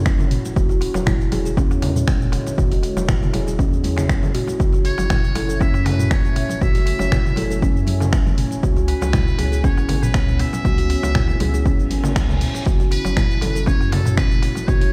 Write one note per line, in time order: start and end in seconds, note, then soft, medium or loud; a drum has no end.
0.00 0.52 A3 medium
0.00 0.52 C#4 medium
0.00 8.59 E4 medium
0.00 2.54 F#4 medium
0.00 0.52 C#5 medium
0.06 0.37 F#1 medium
0.06 finger snap loud
0.06 kick loud
0.06 cabasa medium
0.19 muted conga soft
0.19 high conga loud
0.19 low conga loud
0.19 cabasa soft
0.31 open hi-hat medium
0.31 mid tom medium
0.45 muted conga medium
0.45 cabasa medium
0.56 0.87 E1 loud
0.56 4.56 D3 medium
0.56 4.56 G#3 medium
0.56 0.69 F#4 medium
0.56 12.62 C#5 medium
0.56 kick loud
0.56 cabasa medium
0.69 0.81 F#4 medium
0.69 muted conga medium
0.69 cabasa soft
0.81 open hi-hat medium
0.81 darbuka ka medium
0.94 1.25 E1 medium
0.94 1.06 C#5 medium
0.94 muted conga soft
0.94 darbuka tek loud
0.94 high conga loud
0.94 cabasa medium
1.06 1.14 E4 loud
1.06 finger snap loud
1.06 kick loud
1.06 darbuka dum medium
1.06 cabasa medium
1.21 cabasa soft
1.32 1.63 E1 medium
1.32 1.39 G#4 medium
1.32 open hi-hat medium
1.32 muted conga medium
1.32 high conga loud
1.32 darbuka tek medium
1.45 1.56 G#4 medium
1.45 cabasa medium
1.57 1.70 C#4 medium
1.57 kick loud
1.57 muted conga soft
1.57 darbuka tek medium
1.57 cabasa medium
1.70 2.09 E2 medium
1.70 darbuka ka loud
1.70 cabasa soft
1.82 open hi-hat medium
1.82 muted conga medium
1.82 darbuka tek medium
1.82 low conga loud
1.96 high conga medium
1.96 darbuka dum medium
1.96 cabasa medium
2.08 2.38 E1 medium
2.08 finger snap loud
2.08 kick loud
2.08 cabasa medium
2.21 mid tom medium
2.21 muted conga soft
2.21 cabasa soft
2.32 open hi-hat medium
2.32 mid tom medium
2.32 darbuka tek medium
2.46 muted conga medium
2.46 darbuka ka medium
2.46 high conga medium
2.46 cabasa medium
2.58 2.89 E1 loud
2.58 2.70 F#4 medium
2.58 4.58 G#4 medium
2.58 kick loud
2.58 mid tom medium
2.58 cabasa medium
2.71 2.83 F#4 medium
2.71 open hi-hat medium
2.71 muted conga soft
2.71 cabasa soft
2.83 open hi-hat medium
2.83 darbuka ka medium
2.97 3.27 E1 medium
2.97 3.08 C#5 medium
2.97 muted conga soft
2.97 darbuka tek medium
2.97 high conga loud
2.97 cabasa medium
3.08 3.16 E4 loud
3.08 finger snap loud
3.08 kick loud
3.08 darbuka dum medium
3.08 cabasa medium
3.23 low conga medium
3.23 cabasa soft
3.33 3.64 E1 medium
3.33 3.41 G#4 medium
3.33 open hi-hat medium
3.33 muted conga medium
3.33 darbuka tek medium
3.33 high conga loud
3.47 3.58 G#4 medium
3.47 cabasa medium
3.59 3.72 C#4 medium
3.59 kick loud
3.59 muted conga soft
3.59 high conga medium
3.59 cabasa medium
3.72 4.11 E2 medium
3.72 cabasa soft
3.84 open hi-hat medium
3.84 muted conga medium
3.84 high conga medium
3.97 finger snap medium
3.97 darbuka tek medium
3.97 low conga medium
3.97 cabasa medium
4.09 4.18 D1 loud
4.09 finger snap loud
4.09 kick loud
4.09 cabasa medium
4.23 muted conga soft
4.23 high conga medium
4.23 low conga loud
4.23 cabasa soft
4.35 4.47 F#4 loud
4.35 open hi-hat medium
4.35 mid tom medium
4.48 muted conga medium
4.48 darbuka tek medium
4.48 cabasa medium
4.60 4.91 F#1 loud
4.60 8.59 A3 medium
4.60 8.59 C#4 medium
4.60 6.59 F#4 medium
4.60 4.72 F#4 medium
4.60 kick loud
4.60 cabasa medium
4.73 4.84 F#4 medium
4.73 muted conga soft
4.73 cabasa soft
4.85 5.62 C#5 loud
4.85 open hi-hat medium
4.85 darbuka ka medium
4.98 5.28 F#1 medium
4.98 5.10 C#5 medium
4.98 muted conga soft
4.98 darbuka tek medium
4.98 high conga loud
4.98 cabasa medium
5.10 5.17 E4 loud
5.10 finger snap loud
5.10 kick loud
5.10 darbuka dum medium
5.10 cabasa medium
5.24 cabasa soft
5.35 5.66 F#1 medium
5.35 5.43 A4 medium
5.35 open hi-hat medium
5.35 muted conga soft
5.35 high conga loud
5.35 darbuka tek medium
5.49 5.59 A4 medium
5.49 cabasa medium
5.60 5.73 C#4 medium
5.60 5.87 E5 loud
5.60 kick loud
5.60 muted conga soft
5.60 darbuka tek loud
5.60 cabasa medium
5.74 6.13 F#2 medium
5.74 darbuka ka loud
5.74 cabasa soft
5.86 6.13 B4 loud
5.86 open hi-hat medium
5.86 muted conga medium
5.86 darbuka tek loud
5.86 low conga loud
5.99 high conga medium
5.99 darbuka dum medium
5.99 cabasa medium
6.11 6.42 F#1 medium
6.11 6.63 C#5 loud
6.11 finger snap loud
6.11 kick loud
6.11 cabasa medium
6.24 mid tom medium
6.24 muted conga soft
6.24 cabasa soft
6.36 open hi-hat medium
6.36 mid tom loud
6.36 darbuka tek medium
6.49 darbuka ka medium
6.49 muted conga medium
6.49 high conga medium
6.49 cabasa medium
6.61 6.92 F#1 loud
6.61 6.74 F#4 medium
6.61 8.13 E5 loud
6.61 12.63 G#5 medium
6.61 kick loud
6.61 mid tom medium
6.61 cabasa medium
6.75 6.86 F#4 medium
6.75 open hi-hat medium
6.75 muted conga medium
6.75 cabasa soft
6.86 open hi-hat medium
6.86 darbuka ka medium
6.99 7.30 F#1 medium
6.99 7.11 C#5 medium
6.99 muted conga soft
6.99 darbuka tek medium
6.99 high conga loud
6.99 cabasa medium
7.12 7.19 E4 loud
7.12 finger snap loud
7.12 kick loud
7.12 darbuka dum medium
7.12 cabasa medium
7.25 low conga medium
7.25 cabasa soft
7.36 7.68 F#1 medium
7.36 7.44 A4 medium
7.36 open hi-hat medium
7.36 muted conga medium
7.36 darbuka tek medium
7.36 high conga loud
7.50 7.61 A4 medium
7.50 cabasa medium
7.62 7.75 C#4 medium
7.62 kick loud
7.62 muted conga soft
7.62 high conga medium
7.62 cabasa medium
7.76 8.14 F#2 medium
7.76 cabasa soft
7.87 open hi-hat medium
7.87 muted conga medium
7.87 high conga medium
8.00 darbuka tek medium
8.00 low conga loud
8.00 cabasa medium
8.13 8.44 F#1 medium
8.13 finger snap loud
8.13 kick loud
8.13 cabasa medium
8.26 muted conga soft
8.26 high conga loud
8.26 low conga loud
8.26 cabasa soft
8.38 open hi-hat medium
8.38 mid tom medium
8.51 muted conga medium
8.51 cabasa medium
8.63 8.94 C#2 loud
8.63 12.62 B3 medium
8.63 14.93 C#4 medium
8.63 14.93 E4 medium
8.63 8.75 F#4 medium
8.63 kick loud
8.63 cabasa medium
8.76 8.88 F#4 medium
8.76 muted conga medium
8.76 cabasa soft
8.88 9.66 B4 loud
8.88 open hi-hat medium
8.88 darbuka ka medium
9.01 9.32 C#2 medium
9.01 9.13 C#5 medium
9.01 muted conga soft
9.01 high conga loud
9.01 darbuka tek loud
9.01 cabasa medium
9.13 9.21 E4 loud
9.13 finger snap loud
9.13 kick loud
9.13 darbuka dum medium
9.13 cabasa medium
9.28 cabasa soft
9.38 9.69 C#2 medium
9.38 9.46 G#4 medium
9.38 open hi-hat loud
9.38 muted conga medium
9.38 darbuka tek medium
9.38 high conga loud
9.52 9.63 G#4 medium
9.52 cabasa medium
9.64 9.77 C#4 medium
9.64 10.04 C#5 loud
9.64 kick loud
9.64 muted conga soft
9.64 darbuka tek loud
9.64 cabasa medium
9.77 10.16 G#1 medium
9.77 darbuka ka loud
9.77 cabasa soft
9.89 open hi-hat medium
9.89 muted conga medium
9.89 darbuka tek medium
9.89 low conga medium
10.03 10.41 B4 loud
10.03 high conga medium
10.03 darbuka dum loud
10.03 cabasa medium
10.14 10.45 C#2 medium
10.14 finger snap loud
10.14 kick loud
10.14 cabasa medium
10.28 mid tom medium
10.28 muted conga soft
10.28 cabasa soft
10.39 12.16 E5 loud
10.39 open hi-hat medium
10.39 mid tom loud
10.39 darbuka tek medium
10.53 muted conga medium
10.53 darbuka ka medium
10.53 high conga medium
10.53 cabasa medium
10.65 10.96 C#2 loud
10.65 10.77 F#4 medium
10.65 kick loud
10.65 mid tom medium
10.65 cabasa medium
10.78 10.89 F#4 medium
10.78 open hi-hat medium
10.78 muted conga medium
10.78 cabasa soft
10.90 open hi-hat medium
10.90 darbuka ka medium
11.03 11.33 C#2 medium
11.03 11.15 C#5 medium
11.03 muted conga soft
11.03 high conga loud
11.03 darbuka tek medium
11.03 cabasa medium
11.15 11.22 E4 loud
11.15 finger snap loud
11.15 kick loud
11.15 darbuka dum loud
11.15 cabasa medium
11.28 darbuka ka medium
11.28 low conga medium
11.28 cabasa soft
11.40 11.71 C#2 medium
11.40 11.48 G#4 medium
11.40 open hi-hat loud
11.40 muted conga medium
11.40 darbuka tek medium
11.40 high conga loud
11.54 11.64 G#4 medium
11.54 cabasa medium
11.65 11.78 C#4 medium
11.65 kick loud
11.65 reverse cymbal medium
11.65 muted conga soft
11.65 high conga medium
11.65 cabasa medium
11.79 12.17 G#1 medium
11.79 cabasa soft
11.91 open hi-hat medium
11.91 muted conga soft
11.91 high conga medium
12.04 darbuka tek medium
12.04 low conga loud
12.04 cabasa medium
12.16 12.47 C#2 medium
12.16 finger snap loud
12.16 kick loud
12.16 open hi-hat medium
12.16 cabasa medium
12.29 muted conga soft
12.29 high conga medium
12.29 low conga loud
12.29 cabasa soft
12.41 open hi-hat loud
12.41 mid tom medium
12.54 muted conga medium
12.54 darbuka tek medium
12.54 cabasa medium
12.66 12.97 F#1 loud
12.66 14.93 A3 medium
12.66 14.93 F#4 medium
12.66 12.79 F#4 medium
12.66 14.93 C#5 medium
12.66 kick loud
12.66 cabasa medium
12.80 12.91 F#4 medium
12.80 muted conga medium
12.80 cabasa soft
12.91 13.69 B4 loud
12.91 open hi-hat medium
12.91 darbuka ka medium
13.05 13.35 F#1 medium
13.05 13.16 C#5 medium
13.05 muted conga soft
13.05 darbuka tek medium
13.05 high conga loud
13.05 cabasa medium
13.17 13.24 E4 loud
13.17 finger snap loud
13.17 kick loud
13.17 darbuka dum medium
13.17 cabasa medium
13.31 cabasa soft
13.41 13.73 F#1 medium
13.41 13.49 A4 medium
13.41 open hi-hat loud
13.41 muted conga medium
13.41 darbuka tek medium
13.41 high conga loud
13.55 13.66 A4 medium
13.55 cabasa medium
13.66 13.80 C#4 medium
13.66 13.94 C#5 loud
13.66 kick loud
13.66 muted conga soft
13.66 darbuka tek medium
13.66 cabasa medium
13.81 14.19 F#2 medium
13.81 darbuka ka loud
13.81 cabasa soft
13.92 14.17 A4 loud
13.92 open hi-hat medium
13.92 muted conga medium
13.92 darbuka tek loud
13.92 low conga loud
14.05 high conga medium
14.05 darbuka dum loud
14.05 cabasa medium
14.17 14.48 F#1 medium
14.17 14.70 B4 loud
14.17 finger snap loud
14.17 kick loud
14.17 cabasa medium
14.31 mid tom medium
14.31 muted conga soft
14.31 cabasa soft
14.42 open hi-hat medium
14.42 mid tom medium
14.42 darbuka tek medium
14.55 darbuka ka medium
14.55 muted conga medium
14.55 high conga medium
14.55 cabasa medium
14.68 14.93 F#1 loud
14.68 14.80 F#4 medium
14.68 14.93 C#5 loud
14.68 kick loud
14.68 mid tom medium
14.68 cabasa medium
14.81 14.93 F#4 medium
14.81 open hi-hat medium
14.81 muted conga medium
14.81 cabasa soft